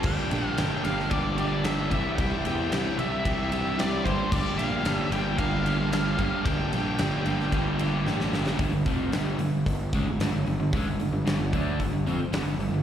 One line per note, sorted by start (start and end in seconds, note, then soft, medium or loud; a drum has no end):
0.03 0.16 G1 loud
0.03 0.29 G2 loud
0.03 0.30 D3 loud
0.03 0.31 G3 loud
0.03 0.31 A#3 loud
0.03 0.31 D4 loud
0.03 0.58 G5 loud
0.03 kick loud
0.03 crash loud
0.07 0.32 G4 loud
0.30 0.55 A#1 medium
0.30 0.56 G2 medium
0.30 0.57 D3 medium
0.30 0.58 G3 medium
0.30 0.57 A#3 loud
0.30 0.58 D4 medium
0.30 0.59 G4 medium
0.30 ride medium
0.57 0.70 G1 medium
0.57 0.83 G2 loud
0.57 0.83 D3 medium
0.57 0.85 G3 loud
0.57 0.84 A#3 loud
0.57 0.84 D4 loud
0.57 0.86 G4 loud
0.57 0.83 G5 loud
0.57 snare loud
0.57 ride loud
0.84 1.87 G1 medium
0.84 1.10 G2 medium
0.84 1.10 D3 medium
0.84 1.12 G3 medium
0.84 1.11 A#3 medium
0.84 1.12 D4 medium
0.84 1.13 G4 medium
0.84 1.12 F5 medium
0.84 ride medium
0.99 snare soft
1.10 1.36 G2 loud
1.10 1.37 D3 loud
1.10 1.38 G3 loud
1.10 1.38 A#3 medium
1.10 1.39 D4 loud
1.10 1.39 G4 loud
1.10 1.36 D5 medium
1.10 kick loud
1.10 ride loud
1.38 1.64 G2 medium
1.38 1.64 D3 loud
1.38 1.65 G3 medium
1.38 1.65 A#3 loud
1.38 1.65 D4 medium
1.38 1.66 G4 medium
1.38 1.65 D5 medium
1.38 ride medium
1.64 1.90 G2 medium
1.64 1.90 D3 medium
1.64 1.91 G3 loud
1.64 1.90 A#3 loud
1.64 1.91 D4 medium
1.64 1.92 G4 loud
1.64 1.90 E5 loud
1.64 snare loud
1.64 ride loud
1.91 2.04 C2 medium
1.91 2.17 C3 loud
1.91 2.17 E3 loud
1.91 2.18 G3 loud
1.91 2.17 E4 loud
1.91 2.19 G4 loud
1.91 2.16 E5 medium
1.91 kick medium
1.91 ride medium
2.17 2.30 C2 medium
2.17 2.43 C3 loud
2.17 2.44 E3 loud
2.17 2.45 G3 loud
2.17 2.45 E4 loud
2.17 2.47 G4 loud
2.17 2.44 G5 loud
2.17 kick loud
2.17 ride loud
2.45 2.69 E2 medium
2.45 2.70 C3 loud
2.45 2.70 E3 loud
2.45 2.72 G3 medium
2.45 2.72 E4 loud
2.45 2.72 G4 loud
2.45 2.70 G5 loud
2.45 ride medium
2.71 2.84 C2 loud
2.71 2.96 C3 loud
2.71 2.97 E3 loud
2.71 2.98 G3 loud
2.71 2.98 E4 loud
2.71 2.99 G4 loud
2.71 2.96 G5 medium
2.71 snare loud
2.71 ride loud
2.97 4.01 C2 medium
2.97 3.23 C3 medium
2.97 3.23 E3 medium
2.97 3.24 G3 medium
2.97 3.24 E4 loud
2.97 3.25 G4 medium
2.97 3.50 E5 medium
2.97 ride medium
3.24 3.50 C3 medium
3.24 3.50 E3 loud
3.24 3.52 G3 loud
3.24 3.51 E4 loud
3.24 3.53 G4 loud
3.24 kick loud
3.24 ride loud
3.51 3.76 C3 loud
3.51 3.76 E3 medium
3.51 3.77 G3 medium
3.51 3.77 E4 loud
3.51 3.78 G4 loud
3.51 3.79 E5 medium
3.51 ride medium
3.77 4.03 C3 medium
3.77 4.03 E3 loud
3.77 4.05 G3 loud
3.77 4.03 E4 loud
3.77 4.06 G4 loud
3.77 4.05 D5 medium
3.77 snare loud
3.77 ride loud
4.04 4.18 G1 medium
4.04 4.30 G2 loud
4.04 4.30 D3 loud
4.04 4.31 G3 loud
4.04 4.32 A#3 loud
4.04 4.32 D4 loud
4.04 4.32 G4 loud
4.04 4.32 C5 medium
4.04 kick medium
4.04 ride medium
4.31 4.44 G1 loud
4.31 4.56 G2 loud
4.31 4.56 D3 loud
4.31 4.57 G3 loud
4.31 4.58 A#3 loud
4.31 4.58 D4 loud
4.31 4.58 G4 loud
4.31 4.59 D5 loud
4.31 kick loud
4.31 crash loud
4.56 4.82 A#1 medium
4.56 4.83 G2 medium
4.56 4.83 D3 medium
4.56 4.84 G3 loud
4.56 4.84 A#3 medium
4.56 4.85 D4 medium
4.56 4.85 G4 loud
4.56 4.98 F5 loud
4.56 ride medium
4.83 4.97 G1 medium
4.83 5.10 G2 loud
4.83 5.10 D3 loud
4.83 5.11 G3 loud
4.83 5.12 A#3 loud
4.83 5.13 D4 loud
4.83 5.12 G4 loud
4.83 snare loud
4.83 ride loud
4.98 5.12 E5 loud
5.10 6.14 G1 medium
5.10 5.37 G2 medium
5.10 5.36 D3 medium
5.10 5.37 G3 medium
5.10 5.38 A#3 medium
5.10 5.38 D4 medium
5.10 5.39 G4 medium
5.10 5.38 G5 medium
5.10 ride medium
5.37 5.64 G2 loud
5.37 5.64 D3 loud
5.37 5.65 G3 loud
5.37 5.66 A#3 loud
5.37 5.66 D4 loud
5.37 5.66 G4 loud
5.37 6.45 F5 medium
5.37 kick loud
5.37 ride loud
5.64 5.90 G2 medium
5.64 5.90 D3 medium
5.64 5.91 G3 medium
5.64 5.92 A#3 medium
5.64 5.92 D4 medium
5.64 5.92 G4 medium
5.64 ride medium
5.90 6.17 G2 loud
5.90 6.17 D3 loud
5.90 6.18 G3 loud
5.90 6.18 A#3 loud
5.90 6.19 D4 loud
5.90 6.19 G4 loud
5.90 snare loud
5.90 ride loud
6.17 6.31 G1 medium
6.17 6.45 G2 medium
6.17 6.44 D3 loud
6.17 6.45 G3 loud
6.17 6.46 A#3 medium
6.17 6.46 D4 loud
6.17 6.47 G4 loud
6.17 kick medium
6.17 ride medium
6.45 6.57 G1 loud
6.45 6.71 G2 loud
6.45 6.71 D3 loud
6.45 6.72 G3 loud
6.45 6.72 A#3 loud
6.45 6.73 D4 loud
6.45 6.73 G4 loud
6.45 8.02 G5 medium
6.45 kick loud
6.45 ride loud
6.72 6.96 A#1 medium
6.72 6.97 G2 medium
6.72 6.97 D3 medium
6.72 6.98 G3 medium
6.72 6.99 A#3 loud
6.72 6.99 D4 medium
6.72 6.99 G4 medium
6.72 ride medium
6.98 7.11 G1 medium
6.98 7.24 G2 medium
6.98 7.24 D3 loud
6.98 7.25 G3 loud
6.98 7.25 A#3 loud
6.98 7.26 D4 loud
6.98 7.26 G4 loud
6.98 snare loud
6.98 ride loud
7.25 8.02 G1 medium
7.25 7.50 G2 medium
7.25 7.51 D3 medium
7.25 7.51 G3 medium
7.25 7.52 A#3 medium
7.25 7.52 D4 medium
7.25 7.53 G4 loud
7.25 ride medium
7.40 snare soft
7.52 7.78 G2 medium
7.52 7.78 D3 medium
7.52 7.78 G3 medium
7.52 7.79 A#3 loud
7.52 7.79 D4 loud
7.52 7.80 G4 loud
7.52 kick loud
7.52 ride medium
7.79 8.04 G2 medium
7.79 8.04 D3 medium
7.79 8.05 G3 medium
7.79 8.05 A#3 loud
7.79 8.05 D4 medium
7.79 8.06 G4 medium
7.79 ride medium
8.05 8.29 A1 medium
8.05 8.32 G2 loud
8.05 8.32 D3 loud
8.05 8.33 G3 loud
8.05 8.32 A#3 loud
8.05 8.33 D4 loud
8.05 8.33 G4 loud
8.05 snare medium
8.20 snare medium
8.32 8.56 G1 medium
8.32 8.58 G2 medium
8.32 8.58 D3 medium
8.32 8.58 G3 medium
8.32 8.58 A#3 medium
8.32 8.59 D4 medium
8.32 8.59 G4 medium
8.32 snare medium
8.46 snare medium
8.59 8.71 G1 medium
8.59 8.72 G2 loud
8.59 8.72 D3 loud
8.59 kick loud
8.59 open hi-hat medium
8.72 8.85 G1 medium
8.72 8.86 G2 medium
8.72 8.86 D3 medium
8.86 9.11 F1 medium
8.86 9.12 F2 medium
8.86 9.12 C3 loud
8.86 9.13 F3 loud
8.86 kick loud
8.86 open hi-hat medium
9.12 9.37 G1 loud
9.12 9.39 G2 medium
9.12 9.39 D3 loud
9.12 9.39 G3 loud
9.12 snare loud
9.12 open hi-hat medium
9.39 9.64 G1 medium
9.39 9.61 G2 medium
9.39 9.61 D3 medium
9.39 open hi-hat medium
9.66 9.91 G1 medium
9.66 9.88 G2 medium
9.66 9.88 D3 medium
9.66 kick medium
9.66 open hi-hat medium
9.93 10.06 C#2 medium
9.93 10.06 C#3 medium
9.93 10.07 G#3 loud
9.93 kick loud
9.93 open hi-hat medium
10.06 10.18 G1 medium
10.06 10.19 G2 medium
10.06 10.20 D3 medium
10.19 10.32 G1 medium
10.19 10.33 G2 medium
10.19 10.33 D3 loud
10.19 snare loud
10.19 open hi-hat medium
10.33 10.45 G1 medium
10.33 10.46 G2 medium
10.33 10.46 D3 medium
10.46 10.59 G1 medium
10.46 10.59 G2 medium
10.46 10.59 D3 medium
10.46 open hi-hat medium
10.60 10.72 G1 medium
10.60 10.73 G2 medium
10.60 10.73 D3 medium
10.73 10.86 C#2 medium
10.73 10.86 C#3 loud
10.73 10.87 G#3 loud
10.73 kick loud
10.73 open hi-hat medium
10.86 10.99 G1 medium
10.86 10.98 G2 medium
10.86 10.99 D3 medium
10.99 11.12 G1 medium
10.99 11.11 G2 medium
10.99 11.12 D3 medium
10.99 open hi-hat medium
11.12 11.25 G1 medium
11.12 11.24 G2 medium
11.12 11.25 D3 medium
11.25 11.38 G1 loud
11.25 11.39 G2 loud
11.25 11.39 D3 loud
11.25 snare loud
11.25 open hi-hat medium
11.39 11.52 G1 medium
11.39 11.53 G2 medium
11.39 11.52 D3 medium
11.53 11.78 D2 medium
11.53 11.79 D3 medium
11.53 11.79 A3 medium
11.53 11.80 D4 loud
11.53 kick loud
11.53 open hi-hat medium
11.79 11.92 G1 medium
11.79 11.92 G2 medium
11.79 11.92 D3 medium
11.79 kick medium
11.79 open hi-hat medium
11.93 12.06 G1 medium
11.93 12.07 G2 medium
11.93 12.06 D3 medium
12.06 12.18 F2 medium
12.06 12.19 F3 medium
12.06 12.20 C4 loud
12.06 open hi-hat medium
12.19 muted picked electric bass stroke soft
12.19 muted overdriven electric guitar stroke medium
12.31 12.44 G1 medium
12.31 12.45 G2 medium
12.31 12.46 D3 loud
12.31 snare loud
12.31 open hi-hat medium
12.45 12.57 G1 medium
12.45 12.59 G2 medium
12.45 12.60 D3 medium
12.57 12.70 G1 medium
12.57 12.72 G2 medium
12.57 12.73 D3 medium
12.57 open hi-hat medium
12.71 12.83 G1 medium
12.71 12.83 G2 medium
12.71 12.83 D3 medium